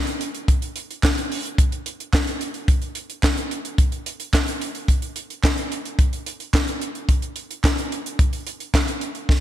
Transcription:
0.07 closed hi-hat
0.21 closed hi-hat
0.35 closed hi-hat
0.48 kick, closed hi-hat
0.62 closed hi-hat
0.76 closed hi-hat
0.91 closed hi-hat
1.03 kick, snare, clap
1.05 clap
1.18 closed hi-hat
1.32 open hi-hat
1.45 closed hi-hat
1.58 kick, closed hi-hat
1.72 closed hi-hat
1.86 closed hi-hat
2.00 closed hi-hat
2.13 kick, snare, clap
2.15 clap
2.27 closed hi-hat
2.41 closed hi-hat
2.54 closed hi-hat
2.68 kick, closed hi-hat
2.82 closed hi-hat
2.95 closed hi-hat
3.10 closed hi-hat
3.23 kick, snare, clap
3.25 clap
3.37 closed hi-hat
3.51 closed hi-hat
3.65 closed hi-hat
3.78 kick, closed hi-hat
3.92 closed hi-hat
4.06 closed hi-hat
4.20 closed hi-hat
4.33 kick, snare, clap
4.48 closed hi-hat
4.61 closed hi-hat
4.75 closed hi-hat
4.88 kick, closed hi-hat
5.02 closed hi-hat
5.16 closed hi-hat
5.30 closed hi-hat
5.43 kick, snare, clap
5.46 clap
5.58 closed hi-hat
5.72 closed hi-hat
5.85 closed hi-hat
5.99 kick, closed hi-hat
6.13 closed hi-hat
6.26 closed hi-hat
6.40 closed hi-hat
6.54 kick, snare, clap
6.56 clap
6.68 closed hi-hat
6.82 closed hi-hat
6.95 closed hi-hat
7.09 kick, closed hi-hat
7.22 closed hi-hat
7.36 closed hi-hat
7.51 closed hi-hat
7.64 kick, snare, clap
7.66 clap
7.78 closed hi-hat
7.92 closed hi-hat
8.06 closed hi-hat
8.19 kick, closed hi-hat
8.33 closed hi-hat
8.47 closed hi-hat
8.60 closed hi-hat
8.74 kick, snare, clap
8.88 closed hi-hat
9.01 closed hi-hat
9.15 closed hi-hat
9.29 kick, snare

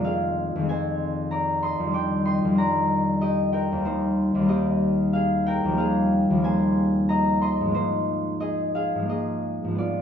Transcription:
Already playing: F2 D#3 G#3 F4
0.01 C4 F5
0.06 G#4
0.56 F2 D#3
0.62 G#3 C4
0.69 C5 G#5
1.31 D5 A#5
1.63 D#5 C6
1.80 F2 D#3
1.87 G3 D4
1.94 G5 D6
2.25 D#5 C6
2.44 F2 D#3
2.51 G3 D4
2.58 D5 A#5
3.21 G4 D#5
3.53 A#4 G5
3.72 D#2 D#3
3.78 G3 A#3
3.85 D#4 C5
4.35 D#2 D#3
4.42 G3 A#3
4.49 G4 D#5
5.13 G#4 F5
5.46 A#4 G5
5.65 D#2 F3
5.71 G3 A#3
5.78 G#4 F5
6.30 D#2 F3
6.37 G3 A#3
6.44 C5 G#5
7.09 D#5 A#5
7.41 D#5 C6
7.61 G#2 F3
7.68 G#3 A#3
7.75 D#4 C5
8.40 G#4 D#5
8.75 G#4 F5
8.95 G#2 F3
9.02 G#3 A#3
9.09 G#4 D#5
9.64 G#2 F3
9.71 G#3 B3
9.78 F4 D5

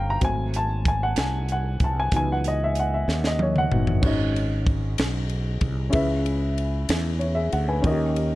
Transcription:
Already playing: G1 C#3 F3 G3 C4 F5 G5 A#5
0.10 A#5
0.21 G#1 F#3 A3 C4 G#5, kick, closed hi-hat
0.54 A5, closed hi-hat
0.85 G#5, kick, closed hi-hat
1.03 F#5
1.16 C2 G#5, snare, closed hi-hat
1.49 F#5, closed hi-hat
1.80 C2, kick, closed hi-hat
1.84 A5
2.00 G#5
2.12 C#2 E3 F#3 B3 D#4, kick, closed hi-hat
2.16 G#5
2.32 F#5
2.44 D#5, closed hi-hat
2.64 E5
2.75 closed hi-hat
2.79 F#5
2.94 E5
3.08 D#2, snare
3.24 D#5, snare
3.39 C#5, high tom
3.56 F#5, mid tom
3.72 G1 E3 F#3 B3 D#4, mid tom
3.87 floor tom
4.01 G#1 G#2 C#4 D#4 F#4 G#4, kick, crash
4.07 D#5
4.36 ride
4.67 kick, ride
4.98 B1, snare, ride
5.29 ride
5.61 C2, kick, ride
5.90 C#3 C#4 E4 G#4 B4, kick, ride
5.94 C#2 E5
6.26 ride
6.58 ride
6.89 E2, snare, ride
7.19 E4 C#5, ride
7.35 G#4 E5
7.52 D2 F#5, ride
7.68 B4 G#5
7.82 D#2 D#3 C#4 D#4 F4 A#4, kick, ride
7.87 G4 D#5
8.16 ride

